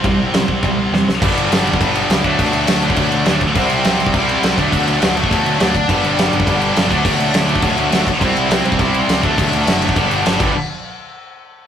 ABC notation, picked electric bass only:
X:1
M:4/4
L:1/8
Q:1/4=206
K:G
V:1 name="Picked electric bass" clef=bass
C,,2 C,, C,, C,, C,, E,, C,, | G,,, G,,, G,,, G,,, G,,,2 ^C,, D,, | D,, D,, D,,2 D,, D,, D,, D,, | C,, C,, C,, C,, C,,2 C,, D,, |
D,, D,, D,,2 D,, D,, D,, D,, | G,,, G,,, G,,, G,,, G,,,2 G,,, D,, | D,, D,, D,,2 D,, D,, D,, B,,, | C,, C,, C,, C,, C,,2 ^C,, D,, |
D,, D,, F,,,2 G,,, G,,, G,,, G,,, | z8 |]